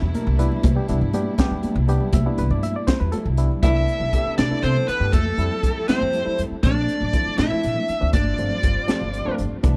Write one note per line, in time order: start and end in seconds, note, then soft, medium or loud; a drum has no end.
0.00 0.12 E2 medium
0.00 3.59 B2 medium
0.00 3.59 G3 medium
0.00 3.59 D4 medium
0.00 3.59 E4 medium
0.00 low conga medium
0.14 0.39 A#4 medium
0.14 muted upright bass stroke soft
0.14 closed hi-hat medium
0.14 high conga loud
0.27 0.48 C2 medium
0.39 0.69 G3 medium
0.39 0.69 B3 medium
0.39 0.69 D4 medium
0.39 0.69 E4 medium
0.39 0.85 B4 medium
0.39 closed hi-hat medium
0.39 low conga soft
0.52 low conga medium
0.63 0.75 C2 loud
0.63 kick loud
0.63 closed hi-hat medium
0.63 muted conga medium
0.63 high conga loud
0.76 0.86 G3 medium
0.76 0.86 B3 medium
0.76 0.86 D4 medium
0.76 0.87 G4 medium
0.88 1.00 C2 medium
0.88 1.09 G3 medium
0.88 1.09 B3 medium
0.88 1.09 D4 medium
0.88 1.09 E4 medium
0.88 closed hi-hat medium
1.01 1.23 G2 medium
1.01 low conga medium
1.13 1.34 G3 medium
1.13 1.34 B3 medium
1.13 1.34 D4 medium
1.13 1.34 G4 loud
1.13 closed hi-hat medium
1.13 high conga loud
1.13 low conga soft
1.38 1.79 G3 loud
1.38 1.79 B3 medium
1.38 1.79 D4 medium
1.38 1.80 G4 loud
1.38 muted upright bass stroke soft
1.38 kick medium
1.38 snare loud
1.38 closed hi-hat medium
1.38 muted conga loud
1.51 1.62 E2 medium
1.51 low conga medium
1.63 muted upright bass stroke soft
1.63 closed hi-hat medium
1.63 high conga loud
1.76 1.97 C2 loud
1.88 2.19 G3 medium
1.88 2.19 B3 medium
1.88 2.19 D4 medium
1.88 2.19 G4 loud
1.88 closed hi-hat medium
1.88 low conga soft
2.00 low conga medium
2.13 2.24 C2 loud
2.13 2.26 E5 medium
2.13 kick loud
2.13 closed hi-hat medium
2.13 muted conga medium
2.13 high conga medium
2.26 3.07 G3 medium
2.26 3.07 B3 medium
2.26 3.07 D4 medium
2.26 3.07 E4 medium
2.26 2.39 G4 medium
2.38 2.49 C2 medium
2.38 2.51 B4 medium
2.38 closed hi-hat medium
2.38 low conga soft
2.50 2.72 G2 medium
2.50 2.63 D5 medium
2.50 low conga medium
2.63 2.75 E5 medium
2.63 closed hi-hat medium
2.63 high conga medium
2.76 2.88 D5 medium
2.87 3.00 C5 loud
2.87 muted upright bass stroke soft
2.87 kick medium
2.87 snare loud
2.87 closed hi-hat medium
2.87 muted conga loud
3.00 3.11 E2 medium
3.00 3.13 B4 medium
3.00 low conga medium
3.12 3.27 A4 medium
3.12 muted upright bass stroke soft
3.12 closed hi-hat medium
3.12 high conga loud
3.12 low conga soft
3.26 3.47 C2 loud
3.26 low conga soft
3.37 3.63 G3 medium
3.37 3.62 B3 medium
3.37 3.63 D4 medium
3.37 3.62 E4 medium
3.37 closed hi-hat medium
3.51 low conga medium
3.63 3.84 C2 medium
3.63 5.12 C3 medium
3.63 4.04 A3 medium
3.63 5.12 B3 medium
3.63 4.04 B3 medium
3.63 5.12 D4 medium
3.63 4.04 D4 medium
3.63 5.11 E4 medium
3.63 4.04 E4 medium
3.63 4.35 E4 medium
3.63 6.60 A4 medium
3.63 4.34 E5 medium
3.63 kick medium
3.63 closed hi-hat medium
3.63 muted conga medium
3.63 high conga medium
3.88 closed hi-hat medium
4.00 4.11 B1 medium
4.00 high conga medium
4.00 low conga medium
4.13 4.44 A3 medium
4.13 4.44 B3 medium
4.13 4.44 D4 medium
4.13 4.44 G4 medium
4.13 kick medium
4.13 closed hi-hat medium
4.26 muted upright bass stroke soft
4.38 4.49 C3 medium
4.38 4.62 D4 medium
4.38 4.64 D5 medium
4.38 snare loud
4.38 closed hi-hat medium
4.38 muted conga medium
4.38 high conga medium
4.51 4.91 A3 medium
4.51 4.91 B3 medium
4.51 4.91 D4 medium
4.51 4.92 E4 medium
4.51 muted upright bass stroke soft
4.63 4.74 C3 medium
4.63 4.87 C4 medium
4.63 4.88 C5 medium
4.63 closed hi-hat medium
4.63 low conga soft
4.77 high conga medium
4.77 low conga medium
4.88 5.12 B3 medium
4.88 5.13 B4 medium
4.88 muted upright bass stroke soft
4.88 closed hi-hat medium
5.00 5.11 G2 medium
5.00 5.13 A3 medium
5.00 5.13 B3 medium
5.00 5.13 D4 medium
5.00 5.13 G4 medium
5.13 5.35 F2 medium
5.13 6.62 F3 medium
5.13 5.85 A3 medium
5.13 6.62 E4 medium
5.13 6.62 G4 medium
5.13 5.88 A4 medium
5.13 kick medium
5.13 closed hi-hat medium
5.13 muted conga medium
5.13 high conga medium
5.38 5.49 F2 medium
5.38 5.79 G3 medium
5.38 5.79 A3 medium
5.38 5.79 C4 medium
5.38 5.79 E4 medium
5.38 closed hi-hat medium
5.52 high conga medium
5.52 low conga medium
5.63 5.74 F2 medium
5.63 kick medium
5.63 closed hi-hat medium
5.88 6.19 G3 medium
5.88 6.19 A3 medium
5.88 6.19 C4 medium
5.88 6.41 C4 medium
5.88 6.19 E4 medium
5.88 6.41 C5 medium
5.88 muted upright bass stroke soft
5.88 snare loud
5.88 closed hi-hat medium
5.88 muted conga medium
5.88 high conga medium
6.01 6.22 F2 medium
6.13 closed hi-hat medium
6.13 low conga soft
6.25 6.56 G3 medium
6.25 6.56 A3 medium
6.25 6.56 C4 medium
6.25 6.56 E4 medium
6.25 muted upright bass stroke soft
6.25 low conga medium
6.38 6.49 F2 medium
6.38 closed hi-hat medium
6.51 muted upright bass stroke soft
6.63 6.85 A#1 medium
6.63 7.04 F3 medium
6.63 7.04 A3 medium
6.63 8.12 A3 medium
6.63 7.04 C4 medium
6.63 8.12 D4 medium
6.63 7.04 D4 medium
6.63 7.35 D4 medium
6.63 7.38 D5 medium
6.63 kick medium
6.63 closed hi-hat medium
6.63 muted conga medium
6.63 high conga medium
6.88 closed hi-hat medium
7.00 7.12 A1 medium
7.00 high conga medium
7.00 low conga medium
7.13 7.44 F3 medium
7.13 7.44 A3 medium
7.13 7.44 C4 medium
7.13 7.44 E4 medium
7.13 kick medium
7.13 closed hi-hat medium
7.26 muted upright bass stroke soft
7.38 7.49 A#2 medium
7.38 8.10 E4 medium
7.38 8.10 E5 medium
7.38 snare loud
7.38 closed hi-hat medium
7.38 muted conga medium
7.38 high conga medium
7.51 7.92 F3 medium
7.51 7.92 A3 medium
7.51 7.92 C4 medium
7.51 7.92 E4 medium
7.51 muted upright bass stroke soft
7.63 7.75 A#2 medium
7.63 closed hi-hat medium
7.63 low conga soft
7.76 high conga medium
7.76 low conga medium
7.88 muted upright bass stroke soft
7.88 closed hi-hat medium
8.00 8.12 D2 medium
8.00 8.13 F3 medium
8.00 8.13 A3 medium
8.00 8.14 C4 medium
8.00 8.14 D4 medium
8.12 8.35 G1 medium
8.12 9.62 G3 medium
8.12 9.62 C4 medium
8.12 9.35 D4 medium
8.12 9.62 F4 medium
8.12 9.35 D5 medium
8.12 kick loud
8.12 closed hi-hat medium
8.12 muted conga medium
8.12 high conga medium
8.38 8.49 G1 medium
8.38 8.79 F3 medium
8.38 8.79 A3 medium
8.38 8.80 C4 medium
8.38 8.80 D4 medium
8.38 closed hi-hat medium
8.51 high conga medium
8.51 low conga medium
8.63 8.74 G1 medium
8.63 kick medium
8.63 closed hi-hat medium
8.88 9.19 F3 medium
8.88 9.19 A3 medium
8.88 9.19 C4 medium
8.88 9.19 D4 medium
8.88 muted upright bass stroke soft
8.88 snare medium
8.88 closed hi-hat medium
8.88 muted conga medium
8.88 high conga medium
9.01 9.23 G1 medium
9.01 low conga soft
9.14 closed hi-hat medium
9.14 low conga soft
9.25 9.56 F3 medium
9.25 9.56 A3 medium
9.25 9.56 C4 medium
9.25 9.57 D4 medium
9.25 muted upright bass stroke soft
9.25 high conga medium
9.38 9.50 G1 medium
9.38 closed hi-hat medium
9.51 muted upright bass stroke soft
9.51 low conga soft
9.63 9.77 C2 medium
9.63 9.77 C3 medium
9.63 9.77 E3 medium
9.63 9.77 A3 medium
9.63 9.77 B3 medium
9.63 9.77 D4 medium
9.63 9.77 A4 medium
9.63 9.77 E5 medium
9.63 kick loud
9.63 closed hi-hat medium
9.63 muted conga medium
9.63 high conga medium